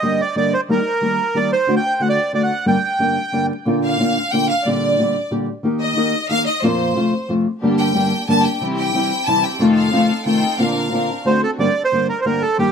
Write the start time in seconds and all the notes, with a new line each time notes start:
Already playing: D#5
0.02 G2 D3 G3 A#3 D4 G4
0.21 D5
0.35 G2 D3 G3 A#3 D4 G4 D5
0.54 C5
0.69 D#3 G3 A#3 D#4 G4 A#4
1.01 D#3 G3 A#3 D#4 G4
1.35 D#3 G3 A#3 D#4 G4 D5
1.52 C5
1.67 D3 A3 D4 F#4
1.76 G5
2.00 D3 A3 D4 F#4 F#5
2.09 D5
2.33 D3 A3 D4 F#4 D5
2.43 F#5
2.66 G2 D3 G3 A#3 D4 G4 G5
2.99 G2 D3 G3 A#3 D4 G4
3.32 G2 D3 G3 A#3 D4 G4
3.65 A#2 D3 A#3 D4 F4
3.84 F5
3.99 A#2 D3 A#3 D4 F4
4.32 A#2 D3 A#3 D4 F4 G5
4.48 F5
4.64 A#2 D3 G3 D4 G4 D5
4.98 A#2 D3 G3 D4 G4
5.31 A#2 D3 G3 D4 G4
5.63 D#3 A#3 D#4 G4
5.81 D#5
5.96 D#3 A#3 D#4 G4
6.29 D#3 A#3 D#4 G4 F5
6.46 D#5
6.62 F2 A#2 F3 A#3 C4 F4 C5
6.95 F2 C3 F3 A3 C4 F4
7.28 F2 C3 F3 A3 C4 F4
7.61 G2 D3 G3 A#3 D4 G4
7.79 G5
7.94 G2 D3 G3 A#3 D4 G4
8.28 G2 D3 G3 A#3 D4 G4 A5
8.45 G5
8.61 C3 E3 G3 C4 E4 G4
8.78 G5
8.94 C3 E3 G3 C4 E4 G4
9.27 C3 E3 G3 C4 E4 G4 A5
9.43 G5
9.59 F2 C3 D#3 A3 C4 D#4 F4 A4
9.76 F5
9.92 F2 C3 D#3 A3 C4 D#4 F4 A4
10.25 F2 C3 D#3 A3 C4 D#4 F4 A4 G5
10.58 A#2 D3 A#3 C4 D4 F4 A#4 F5
10.91 A#2 D3 A#3 C4 D4 F4 A#4
11.25 D3 A3 C4 D4 F#4 C5
11.44 A4
11.58 G2 D3 G3 A#3 D4 G4 D5
11.85 C5
11.92 G2 D3 G3 A#3 D4 G4
12.09 A#4
12.21 G2 D3 G3 C5
12.26 A#3 D4 G4 A#4
12.42 A4
12.58 G2 D#3 G3 A#3 D#4 G4